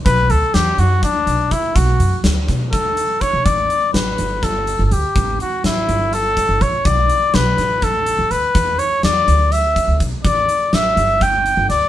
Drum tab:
HH |xxxxxxx|xxxxxxx|xxxxxxx|xxxxxxx|
SD |--o----|--oo---|--o-o--|--o----|
BD |o---o-o|o--oo-o|o---o--|o----oo|

HH |xxxxxxx|xxxxxxx|xxxxxxx|
SD |--oo---|--o----|--o---o|
BD |o---o--|o----oo|o---o--|